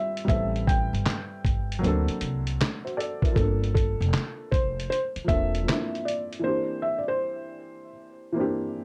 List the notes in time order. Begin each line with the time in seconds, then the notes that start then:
Already playing: G3 C4 E4 F4 G4 C5 E5
0.17 closed hi-hat
0.25 G3 B3 C4 E5, kick
0.29 A1 E4 A4, closed hi-hat
0.56 closed hi-hat
0.67 G5, kick, closed hi-hat
0.93 G1, closed hi-hat
1.06 snare, clap, closed hi-hat
1.45 G1, kick, closed hi-hat
1.72 closed hi-hat
1.79 F#3 A#3 C4
1.83 D2 D4 A4, closed hi-hat
2.08 muted upright bass stroke, closed hi-hat
2.21 C2, closed hi-hat
2.47 closed hi-hat
2.61 snare, clap, closed hi-hat
2.85 F#4 C5, closed hi-hat
2.97 A4 D5, closed hi-hat
3.22 E4 A#4, kick, closed hi-hat
3.32 F3 A#3 C4 A4
3.36 G1 D4 A4, kick, closed hi-hat
3.64 closed hi-hat
3.74 A4, kick, closed hi-hat
4.01 F1, closed hi-hat
4.14 snare, clap, closed hi-hat
4.51 F1 C5, kick, closed hi-hat
4.80 closed hi-hat
4.90 C5, closed hi-hat
5.16 muted upright bass stroke, closed hi-hat
5.24 F3 A#3 C4 E5, kick
5.29 E1 D4 A4, closed hi-hat
5.55 closed hi-hat
5.62 F3 A#3
5.67 C4 D4 E4, snare, clap, closed hi-hat
5.95 closed hi-hat
6.05 D5, closed hi-hat
6.33 closed hi-hat
6.40 E3 A#3
6.44 C4 D4 G4 C5
6.82 E5
6.98 D5
7.08 C5
8.32 E3 A#3
8.36 C4 D4 G4